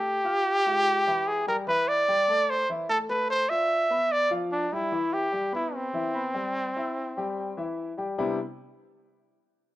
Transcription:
<<
  \new Staff \with { instrumentName = "Trumpet" } { \time 4/4 \key c \major \tempo 4 = 147 g'2. aes'8 bes'8 | b'8 d''4. c''8 r8 a'8 b'8 | c''8 e''4. d''8 r8 d'8 e'8~ | e'8 g'4 e'8 c'2~ |
c'2. r4 | r1 | }
  \new Staff \with { instrumentName = "Grand piano" } { \time 4/4 \key c \major <a a' a''>8 <f' f'' f'''>4 <aes f' f''>4 <e e' e''>4 <g g' g''>8 | <e e' e''>4 <g g' g''>8 <a a' a''>4 <e e' e''>8 <a a' a''>8 <a a' a''>8~ | <a a' a''>8 <f' d''>4 <b b' b''>4 <f f' f''>4 <g g' g''>8 | <e e' e''>4 <g g' g''>8 <b b' b''>4 <e e' e''>8 <b b' b''>8 <g g' g''>8~ |
<g g' g''>8 <e' e'' e'''>4 <g g' g''>4 <e e' e''>4 <g g' g''>8 | <c g b c' d' e'>8 r2. r8 | }
>>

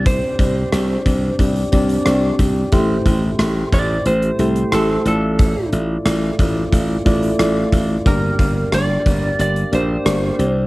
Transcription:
<<
  \new Staff \with { instrumentName = "Lead electric guitar" } { \time 4/4 \key g \dorian \tempo 4 = 90 c''2 r2 | r4. d''8 c''4 a'8 a'8~ | a'8 r2. r8 | bes'4 d''4 d''8 c''4. | }
  \new Staff \with { instrumentName = "Synth keys" } { \time 4/4 \key g \dorian << { <c' d' g' d''>8 <c' d' g' d''>8 <c' d' g' d''>8 <c' d' g' d''>8 <c' d' g' d''>8 <c' d' g' d''>8 <c' d' g' d''>8 <c' d' g' d''>8 | <a e' g' c''>8 <a e' g' c''>8 <a e' g' c''>8 <a e' g' c''>8 <a e' g' c''>8 <a e' g' c''>8 <a e' g' c''>8 <a e' f' d''>8~ | <a e' f' d''>8 <a e' f' d''>8 <a e' f' d''>8 <a e' f' d''>8 <a e' f' d''>8 <a e' f' d''>8 <a e' f' d''>8 <a e' f' d''>8 | <bes d' g' d''>8 <bes d' g' f''>8 <bes d' g' d''>8 <bes d' g' d''>8 <bes d' g' d''>8 <bes d' g' d''>8 <bes d' g' d''>8 <c' d' g' d''>8 | } \\ { c4 r2. | a,4. r2 a,8~ | a,4 r2. | g,4. r2 c8 | } >> }
  \new Staff \with { instrumentName = "Slap bass" } { \clef bass \time 4/4 \key g \dorian c,8 c,8 c,8 c,8 c,8 c,8 c,8 c,8 | a,,8 a,,8 a,,8 a,,8 a,,8 c,8 a,,8 a,,8~ | a,,8 a,,8 a,,8 a,,8 a,,8 a,,8 a,,8 a,,8 | g,,8 g,,8 g,,8 g,,8 g,,8 bes,,8 g,,8 c,8 | }
  \new DrumStaff \with { instrumentName = "Drums" } \drummode { \time 4/4 <hh bd>8 <hh bd>8 <hh ss>8 <hh bd>8 <hh bd>16 hh16 <hh bd>16 hh16 <hh ss>8 <hh bd>8 | <hh bd>8 <hh bd>8 <hh ss>8 <hh bd>8 hh16 hh16 hh16 hh16 <hh ss>8 hh8 | <hh bd>8 hh8 <hh ss>8 <hh bd>8 <hh bd>8 <hh bd>16 hh16 <hh ss>8 <hh bd>8 | <hh bd>8 <hh bd>8 <hh ss>8 <hh bd>8 hh16 hh16 hh8 <hh ss>8 hh8 | }
>>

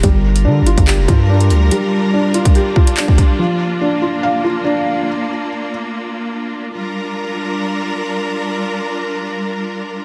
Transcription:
<<
  \new Staff \with { instrumentName = "Felt piano" } { \time 4/4 \key g \minor \tempo 4 = 143 g4 d'8 f'8 g'8 f'8 d'4 | g4 d'8 f'8 g'8 f'8 d'4 | f4 d'8 f'8 f''8 f'8 d'4~ | d'4. r2 r8 |
r1 | r1 | }
  \new Staff \with { instrumentName = "String section" } { \time 4/4 \key g \minor << { <g d' bes'>1~ | <g d' bes'>1 | bes1~ | bes1 |
<g d' f' bes'>1~ | <g d' f' bes'>1 | } \\ { f'1~ | f'1~ | f'1~ | f'1 |
r1 | r1 | } >> }
  \new Staff \with { instrumentName = "808-style bass" } { \clef bass \time 4/4 \key g \minor g,,4 d16. g,,16. g,,8 f,,16 g,4 d,8 | r1 | r1 | r1 |
r1 | r1 | }
  \new DrumStaff \with { instrumentName = "Drums" } \drummode { \time 4/4 <hh bd>8. hh16 r8 hh16 <hh bd>16 hc8 <hh bd>8 r16 hh16 hh8 | hh4 r8 hh16 <hh bd>16 hh8 bd16 hh16 hc16 bd16 <hh bd>8 | r4 r4 r4 r4 | r4 r4 r4 r4 |
r4 r4 r4 r4 | r4 r4 r4 r4 | }
>>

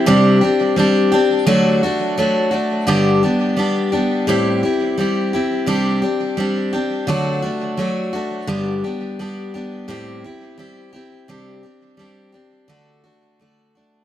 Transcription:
\new Staff \with { instrumentName = "Steel-string acoustic guitar" } { \time 4/4 \key g \major \tempo 4 = 86 <c g c' d' g'>8 <c' d' g'>8 <g c' d' g'>8 <c' d' g'>8 <d fis a d' fis'>8 <a d' fis'>8 <fis a d' fis'>8 <a d' fis'>8 | <g, d g b d' g'>8 <g b d' g'>8 <g b d' g'>8 <g b d' g'>8 <a, g c' e' g'>8 <c' e' g'>8 <g c' e' g'>8 <c' e' g'>8 | <c g c' d' g'>8 <c' d' g'>8 <g c' d' g'>8 <c' d' g'>8 <d fis a d' fis'>8 <a d' fis'>8 <fis a d' fis'>8 <a d' fis'>8 | <g, d g b d' g'>8 <g b d' g'>8 <g b d' g'>8 <g b d' g'>8 <a, g c' e' g'>8 <c' e' g'>8 <g c' e' g'>8 <c' e' g'>8 |
<c g c' d' g'>8 <c' d' g'>8 <g c' d' g'>8 <c' d' g'>8 <d a d' fis'>8 <a d' fis'>8 <d a d' fis'>8 <a d' fis'>8 | }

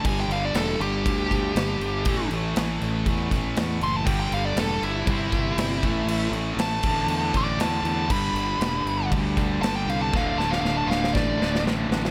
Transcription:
<<
  \new Staff \with { instrumentName = "Lead electric guitar" } { \time 4/4 \key g \major \tempo 4 = 119 gis''16 g''16 f''16 d''16 a'8 g'2~ g'8~ | g'8 r2. c'''16 a''16 | g''16 g''16 f''16 d''16 a'8 e'2~ e'8~ | e'8 r8 a''4. d''8 a''8 a''8 |
b''2 r4 a''16 g''16 f''16 a''16 | f''16 f''16 a''16 f''16 f''16 a''16 f''16 f''16 d''4 r4 | }
  \new Staff \with { instrumentName = "Distorted electric guitar" } { \clef bass \time 4/4 \key g \major <g, d g>1 | <a, e a>1 | <g, d g>2 <c g c'>4. <a, e a>8~ | <a, e a>4. <d, a, d>2~ <d, a, d>8 |
<g, d g>1 | <d, a, d>1 | }
  \new Staff \with { instrumentName = "Distorted electric guitar" } { \clef bass \time 4/4 \key g \major <g, d g>8 <g, d g>8 <g, d g>8 <g, d g>8 <g, d g>8 <g, d g>8 <g, d g>8 <g, d g>8 | <a, e a>8 <a, e a>8 <a, e a>8 <a, e a>8 <a, e a>8 <a, e a>8 <a, e a>8 <a, e a>8 | <g, d g>8 <g, d g>8 <g, d g>8 <g, d g>8 <c g c'>8 <c g c'>8 <c g c'>8 <a, e a>8 | <a, e a>8 <a, e a>8 <a, e a>8 <d, a, d>8 <d, a, d>8 <d, a, d>8 <d, a, d>8 <d, a, d>8 |
<g, d g>8 <g, d g>8 <g, d g>8 <g, d g>8 <g, d g>8 <g, d g>8 <g, d g>8 <g, d g>8 | <d, a, d>8 <d, a, d>8 <d, a, d>8 <d, a, d>8 <d, a, d>8 <d, a, d>8 <d, a, d>8 <d, a, d>8 | }
  \new Staff \with { instrumentName = "Overdriven electric guitar" } { \clef bass \time 4/4 \key g \major r1 | r1 | <g, d g>2 <c g c'>4. <a, e a>8~ | <a, e a>4. <d, a, d>2~ <d, a, d>8 |
<g, d g>2~ <g, d g>8 <g, d g>8 <g, d g>4 | <d, a, d>2~ <d, a, d>8 <d, a, d>8 <d, a, d>4 | }
  \new Staff \with { instrumentName = "Fingered electric bass" } { \clef bass \time 4/4 \key g \major g,,8 g,,8 e,,8 g,,8 d,4 g,,8 g,,8 | a,,8 a,,8 a,,8 a,,8 e,8 a,,8 e,8 fis,,8 | g,,8 g,,8 e,,8 g,,8 g,,4 g,,8 a,,8 | a,,8 a,,8 a,,8 a,,8 e,8 a,,8 e,8 e,8 |
g,,8 g,,8 e,,8 g,,8 d,4 g,,8 c,8 | d,,8 d,,8 d,,8 d,,8 a,,8 d,,8 a,,8 a,,8 | }
  \new DrumStaff \with { instrumentName = "Drums" } \drummode { \time 4/4 <cymc bd>8 cymc8 <cymc sn>8 cymc8 <cymc bd>8 <cymc bd sn>8 <cymc sn>8 cymc8 | <cymc bd>8 cymc8 <cymc sn>8 cymc8 <cymc bd>8 <cymc bd sn>8 <cymc sn>8 cymc8 | <cymc bd>8 cymc8 <cymc sn>8 cymc8 <cymc bd>8 <cymc bd sn>8 <cymc sn>8 <cymc bd>8 | cymc8 cymc8 <cymc sn>8 <cymc bd>8 cymc8 <cymc bd>8 <cymc sn>8 cymc8 |
<cymc bd>8 cymc8 <cymc sn>8 cymc8 <cymc bd>8 <cymc bd sn>8 <cymc sn>8 cymc8 | <bd sn>8 sn16 sn16 sn8 sn16 sn16 <bd sn>8 sn16 sn16 sn8 sn16 sn16 | }
>>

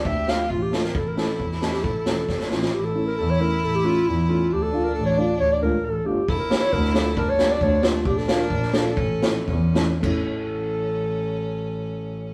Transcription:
<<
  \new Staff \with { instrumentName = "Clarinet" } { \time 2/4 \tempo 4 = 134 e''8 f''8 f'16 g'16 a'16 bes'16 | a'16 bes'16 a'8. r8 g'16 | a'4. f'8 | g'16 a'8 bes'16 a'16 cis''16 bes'8 |
a'16 g'16 f'8 e'8 f'8 | g'16 a'8 bes'16 a'16 cis''16 d''8 | cis''16 d''16 bes'8 a'8 g'8 | a'16 bes'8 cis''16 bes'8 a'8 |
bes'16 cis''8 d''16 cis''8 f'8 | g'16 a'8 bes'8. a'8~ | a'4. r8 | a'2~ |
a'2 | }
  \new Staff \with { instrumentName = "Upright piano" } { \time 2/4 r8 <a d' f'>16 r8. <a d' f'>16 r16 | r8 <a cis' e'>16 r8. <a cis' g'>16 r16 | r8 <a cis' e'>16 r8. <a cis' e'>16 r16 | r8 <a cis' e'>16 r8. <a cis' e'>16 r16 |
r8 <a cis' e'>16 r8. <a cis' e'>16 r16 | r8 <a d' f'>16 r8. <a d' f'>16 r16 | r8 <a d' f'>16 r8. <a d' f'>16 r16 | r8 <bes d' g'>16 r8. <bes d' f'>16 r16 |
r8 <bes d' g'>16 r8. <bes d' g'>16 r16 | r8 <bes d' f'>16 r8. <bes d' f'>16 r16 | r8 <a cis' e'>16 r8. <a cis' e'>16 r16 | <a cis' e'>2~ |
<a cis' e'>2 | }
  \new Staff \with { instrumentName = "Violin" } { \time 2/4 g'4 f'4 | e'2~ | e'4 d'8 cis'8 | e'2~ |
e'2 | d'2~ | d'4. r8 | e'2 |
d'2 | d'2 | cis'4 cis'4 | cis'2~ |
cis'2 | }
  \new Staff \with { instrumentName = "Double bass" } { \clef bass \time 2/4 d,4 a,,4 | a,,4 e,4 | a,,8 e,,8 g,,8 a,,8 | a,,4 e,4 |
a,,4 e,4 | d,4 a,,4 | d,8 cis,8 a,,8 g,,8 | g,,4 d,4 |
g,,4 d,4 | bes,,4 bes,,4 | a,,4 e,4 | a,,2~ |
a,,2 | }
  \new DrumStaff \with { instrumentName = "Drums" } \drummode { \time 2/4 bd8 sn8 bd8 sn16 sn16 | bd8 sn16 sn16 bd16 sn16 sn16 sn16 | bd8 sn8 <bd sn>16 sn16 sn16 sn16 | r4 r4 |
r4 r4 | r4 r4 | r4 r4 | bd8 sn8 bd16 sn16 sn8 |
bd8 sn8 bd8 sn8 | bd16 sn16 sn8 bd16 sn16 sn8 | bd8 sn8 bd8 sn8 | <cymc bd>4 r4 |
r4 r4 | }
>>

